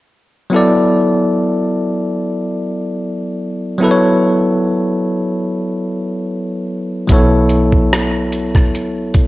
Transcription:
0, 0, Header, 1, 4, 480
1, 0, Start_track
1, 0, Tempo, 821918
1, 303, Time_signature, 4, 2, 24, 8
1, 5415, End_track
2, 0, Start_track
2, 0, Title_t, "Tine electric piano"
2, 0, Program_c, 0, 4
2, 292, Note_on_c, 0, 54, 60
2, 301, Note_on_c, 0, 59, 54
2, 310, Note_on_c, 0, 64, 50
2, 318, Note_on_c, 0, 69, 54
2, 328, Note_on_c, 0, 74, 60
2, 406, Control_c, 0, 64, 127
2, 2194, Note_off_c, 0, 54, 0
2, 2199, Note_off_c, 0, 59, 0
2, 2203, Note_off_c, 0, 64, 0
2, 2207, Note_off_c, 0, 69, 0
2, 2208, Note_on_c, 0, 54, 61
2, 2212, Note_off_c, 0, 74, 0
2, 2220, Note_on_c, 0, 59, 56
2, 2226, Note_on_c, 0, 64, 50
2, 2236, Note_on_c, 0, 69, 55
2, 2243, Note_on_c, 0, 71, 51
2, 2274, Note_off_c, 0, 71, 0
2, 2283, Note_on_c, 0, 73, 70
2, 4112, Note_off_c, 0, 54, 0
2, 4118, Note_off_c, 0, 59, 0
2, 4121, Note_off_c, 0, 64, 0
2, 4126, Note_off_c, 0, 69, 0
2, 4132, Note_on_c, 0, 54, 61
2, 4141, Note_on_c, 0, 59, 53
2, 4150, Note_off_c, 0, 73, 0
2, 4151, Control_c, 0, 64, 0
2, 4151, Note_on_c, 0, 64, 60
2, 4159, Note_on_c, 0, 69, 61
2, 4168, Note_on_c, 0, 73, 65
2, 4255, Control_c, 0, 64, 127
2, 5415, Note_off_c, 0, 54, 0
2, 5415, Note_off_c, 0, 59, 0
2, 5415, Note_off_c, 0, 64, 0
2, 5415, Note_off_c, 0, 69, 0
2, 5415, Note_off_c, 0, 73, 0
2, 5415, End_track
3, 0, Start_track
3, 0, Title_t, "Fingered electric bass"
3, 0, Program_c, 1, 33
3, 4147, Note_on_c, 1, 35, 64
3, 5415, Note_off_c, 1, 35, 0
3, 5415, End_track
4, 0, Start_track
4, 0, Title_t, "Drums"
4, 4141, Note_on_c, 9, 42, 66
4, 4143, Note_on_c, 9, 36, 82
4, 4200, Note_off_c, 9, 42, 0
4, 4201, Note_off_c, 9, 36, 0
4, 4376, Note_on_c, 9, 42, 54
4, 4434, Note_off_c, 9, 42, 0
4, 4510, Note_on_c, 9, 36, 63
4, 4569, Note_off_c, 9, 36, 0
4, 4630, Note_on_c, 9, 37, 83
4, 4634, Note_on_c, 9, 42, 63
4, 4688, Note_off_c, 9, 37, 0
4, 4692, Note_off_c, 9, 42, 0
4, 4861, Note_on_c, 9, 42, 66
4, 4919, Note_off_c, 9, 42, 0
4, 4992, Note_on_c, 9, 36, 77
4, 4998, Note_on_c, 9, 37, 29
4, 5051, Note_off_c, 9, 36, 0
4, 5056, Note_off_c, 9, 37, 0
4, 5110, Note_on_c, 9, 42, 57
4, 5168, Note_off_c, 9, 42, 0
4, 5339, Note_on_c, 9, 42, 48
4, 5342, Note_on_c, 9, 36, 67
4, 5397, Note_off_c, 9, 42, 0
4, 5400, Note_off_c, 9, 36, 0
4, 5415, End_track
0, 0, End_of_file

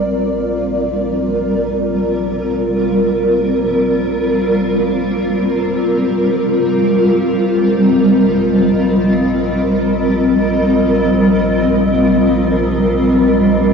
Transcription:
0, 0, Header, 1, 3, 480
1, 0, Start_track
1, 0, Key_signature, -2, "major"
1, 0, Tempo, 500000
1, 13186, End_track
2, 0, Start_track
2, 0, Title_t, "Ambient pad"
2, 0, Program_c, 0, 92
2, 0, Note_on_c, 0, 55, 66
2, 0, Note_on_c, 0, 60, 69
2, 0, Note_on_c, 0, 65, 71
2, 0, Note_on_c, 0, 70, 69
2, 0, Note_on_c, 0, 74, 64
2, 6281, Note_off_c, 0, 74, 0
2, 6867, Note_on_c, 0, 75, 70
2, 13186, Note_off_c, 0, 55, 0
2, 13186, Note_off_c, 0, 60, 0
2, 13186, Note_off_c, 0, 65, 0
2, 13186, Note_off_c, 0, 70, 0
2, 13186, Note_off_c, 0, 75, 0
2, 13186, End_track
3, 0, Start_track
3, 0, Title_t, "Analog synth bass"
3, 0, Program_c, 1, 38
3, 0, Note_on_c, 1, 34, 75
3, 6237, Note_off_c, 1, 34, 0
3, 6266, Note_on_c, 1, 34, 72
3, 13186, Note_off_c, 1, 34, 0
3, 13186, End_track
0, 0, End_of_file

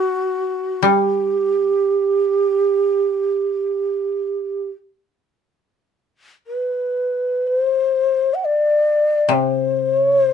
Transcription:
0, 0, Header, 1, 3, 480
1, 0, Start_track
1, 0, Tempo, 500000
1, 9920, End_track
2, 0, Start_track
2, 0, Title_t, "Shakuhachi"
2, 0, Program_c, 0, 77
2, 0, Note_on_c, 0, 66, 75
2, 796, Note_on_c, 0, 67, 61
2, 811, Note_off_c, 0, 66, 0
2, 4476, Note_off_c, 0, 67, 0
2, 6206, Note_on_c, 0, 71, 49
2, 7166, Note_off_c, 0, 71, 0
2, 7166, Note_on_c, 0, 71, 52
2, 7272, Note_off_c, 0, 71, 0
2, 7272, Note_on_c, 0, 72, 52
2, 8006, Note_on_c, 0, 78, 42
2, 8020, Note_off_c, 0, 72, 0
2, 8114, Note_on_c, 0, 74, 52
2, 8128, Note_off_c, 0, 78, 0
2, 8950, Note_on_c, 0, 72, 55
2, 8964, Note_off_c, 0, 74, 0
2, 9603, Note_off_c, 0, 72, 0
2, 9603, Note_on_c, 0, 73, 55
2, 9785, Note_off_c, 0, 73, 0
2, 9785, Note_on_c, 0, 72, 55
2, 9920, Note_off_c, 0, 72, 0
2, 9920, End_track
3, 0, Start_track
3, 0, Title_t, "Koto"
3, 0, Program_c, 1, 107
3, 792, Note_on_c, 1, 55, 36
3, 4037, Note_off_c, 1, 55, 0
3, 8915, Note_on_c, 1, 48, 34
3, 9920, Note_off_c, 1, 48, 0
3, 9920, End_track
0, 0, End_of_file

